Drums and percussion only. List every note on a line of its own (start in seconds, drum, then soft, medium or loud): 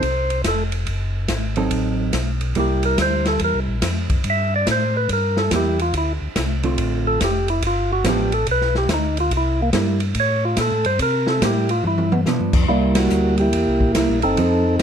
0.02 kick soft
0.02 ride medium
0.30 ride soft
0.44 kick soft
0.44 snare medium
0.44 hi-hat pedal medium
0.44 ride medium
0.72 ride soft
0.86 kick soft
0.86 ride medium
1.28 kick soft
1.28 snare medium
1.28 hi-hat pedal medium
1.28 ride medium
1.56 ride soft
1.71 kick soft
1.71 ride medium
2.13 kick soft
2.13 snare medium
2.13 hi-hat pedal medium
2.13 ride medium
2.41 ride soft
2.55 kick soft
2.55 ride medium
2.83 ride medium
2.98 kick soft
2.98 snare medium
2.98 hi-hat pedal medium
2.98 ride medium
3.25 snare medium
3.25 ride soft
3.39 kick soft
3.39 ride medium
3.82 kick soft
3.82 snare medium
3.82 hi-hat pedal medium
3.82 ride medium
4.10 kick medium
4.10 ride soft
4.24 kick soft
4.24 ride medium
4.67 kick soft
4.67 snare medium
4.67 hi-hat pedal medium
4.67 ride medium
5.09 kick soft
5.09 ride medium
5.37 snare medium
5.51 kick soft
5.51 snare medium
5.51 hi-hat pedal medium
5.51 ride medium
5.79 ride soft
5.93 kick soft
5.93 ride medium
6.36 kick soft
6.36 snare medium
6.36 hi-hat pedal medium
6.36 ride medium
6.63 ride soft
6.78 kick soft
6.78 ride medium
7.20 kick soft
7.20 snare medium
7.20 hi-hat pedal medium
7.20 ride medium
7.48 ride soft
7.62 kick soft
7.62 ride medium
8.04 kick soft
8.04 snare medium
8.04 hi-hat pedal medium
8.04 ride medium
8.32 ride soft
8.47 kick soft
8.47 ride medium
8.61 snare soft
8.75 snare soft
8.89 kick soft
8.89 snare medium
8.89 hi-hat pedal medium
8.89 ride medium
9.17 ride soft
9.31 kick soft
9.31 ride medium
9.73 kick soft
9.73 snare medium
9.73 hi-hat pedal soft
9.73 ride medium
10.00 ride soft
10.15 kick soft
10.15 ride medium
10.57 kick soft
10.57 snare medium
10.57 hi-hat pedal medium
10.57 ride medium
10.85 ride medium
10.99 kick soft
10.99 ride medium
11.27 snare medium
11.41 kick soft
11.41 snare medium
11.41 hi-hat pedal medium
11.41 ride medium
11.69 ride soft
11.84 mid tom medium
11.98 mid tom medium
12.12 mid tom medium
12.26 snare medium
12.26 hi-hat pedal medium
12.53 kick medium
12.53 crash medium
12.95 snare medium
12.95 ride medium
13.10 hi-hat pedal medium
13.38 ride soft
13.53 kick soft
13.53 ride medium
13.80 kick soft
13.95 kick soft
13.95 snare medium
13.95 hi-hat pedal medium
13.95 ride medium
14.22 ride soft
14.37 kick soft
14.37 ride medium
14.79 snare medium
14.79 hi-hat pedal medium
14.79 ride medium